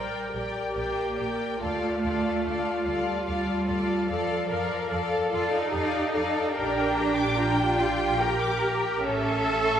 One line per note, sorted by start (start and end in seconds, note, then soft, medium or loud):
0.00 0.33 G3 soft
0.00 0.31 A#4 soft
0.00 0.32 A#4 soft
0.00 0.31 D5 soft
0.00 0.33 G5 soft
0.32 0.42 A#1 soft
0.32 1.61 G4 soft
0.32 0.74 A#4 soft
0.32 0.74 D5 soft
0.32 0.76 G5 soft
0.75 0.85 A#1 soft
0.75 1.57 A#3 medium
0.75 1.15 A#4 soft
0.75 1.15 D5 soft
0.75 1.18 G5 soft
1.16 1.27 A#1 soft
1.16 1.59 A#4 soft
1.16 1.59 D5 soft
1.16 1.61 G5 soft
1.60 1.70 D2 medium
1.60 2.86 A3 medium
1.60 4.04 F4 medium
1.60 2.02 A4 soft
1.60 2.01 D5 soft
1.60 2.03 F5 soft
2.03 2.12 D2 soft
2.03 2.44 A4 soft
2.03 2.44 D5 soft
2.03 2.45 F5 soft
2.45 2.53 D2 soft
2.45 2.84 A4 soft
2.45 2.84 D5 soft
2.45 2.86 F5 soft
2.85 2.94 D2 soft
2.85 3.25 G3 medium
2.85 3.25 A4 soft
2.85 3.25 D5 soft
2.85 3.25 F5 soft
3.26 3.35 D2 medium
3.26 4.07 G3 medium
3.26 3.66 A4 medium
3.26 3.66 D5 soft
3.26 3.67 F5 soft
3.67 3.76 D2 soft
3.67 4.07 A4 soft
3.67 4.07 D5 soft
3.67 4.07 F5 soft
4.08 4.18 F2 medium
4.08 5.32 F3 medium
4.08 4.47 A4 medium
4.08 4.49 A4 medium
4.08 4.47 D5 soft
4.08 4.48 F5 soft
4.48 4.58 F2 soft
4.48 4.89 A4 soft
4.48 4.91 A#4 medium
4.48 4.88 D5 medium
4.48 4.90 F5 soft
4.89 5.00 F2 medium
4.89 5.31 A4 medium
4.89 5.73 A4 medium
4.89 5.30 D5 soft
4.89 5.31 F5 soft
5.32 5.41 F2 medium
5.32 5.52 F4 medium
5.32 5.72 A4 soft
5.32 5.72 D5 soft
5.32 5.72 F5 soft
5.52 6.53 D#4 medium
5.72 5.82 F2 medium
5.72 6.14 G4 medium
5.72 6.14 A4 medium
5.72 6.14 D5 medium
5.72 6.13 F5 medium
6.13 6.23 F2 medium
6.13 6.55 A4 medium
6.13 6.55 A4 soft
6.13 6.53 D5 soft
6.13 6.54 F5 soft
6.54 9.01 A#1 medium
6.54 7.79 D4 medium
6.54 9.00 G4 medium
6.54 6.95 A#4 medium
6.54 6.73 D5 medium
6.54 9.01 G5 medium
6.76 6.96 G5 medium
6.94 7.38 G4 medium
6.94 7.16 A#5 medium
7.15 7.37 D6 soft
7.37 7.80 F4 medium
7.37 7.58 A#5 medium
7.57 7.79 G5 medium
7.78 8.21 F4 medium
7.78 8.21 G4 medium
7.78 8.00 D5 soft
8.00 8.21 G5 medium
8.21 9.04 G4 medium
8.21 9.04 A#4 medium
8.21 8.42 A#5 medium
8.41 8.62 D6 medium
8.61 8.82 A#5 medium
8.82 9.04 G5 soft
9.04 9.80 A1 medium
9.04 9.80 C#4 medium
9.04 9.80 A4 medium
9.04 9.23 C#5 medium
9.04 9.80 E5 medium
9.25 9.46 E5 medium
9.46 9.67 A5 medium
9.67 9.80 C#6 soft